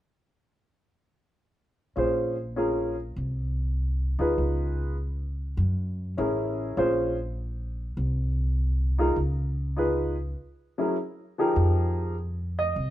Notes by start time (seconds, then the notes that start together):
1.96 A#1 C#4 F4 G#4 C5
2.56 C#4 F4 G#4 A#4
3.16 C2
4.19 D2 D#4 F4 G#4 B4
4.38 C#2
5.57 F#2
6.17 A1 C#4 E4 G#4 A#4
6.77 A#1 C#4 F4 G#4 C5
7.97 C2
8.98 D#4 F4 G#4 A#4
9.16 C#2
9.76 D#4 F4 G#4 B4
10.78 F#3 C#4 E4 G#4 A#4
11.38 F3 D#4 G4 G#4 A#4
11.56 F2
12.59 D#5
12.76 C2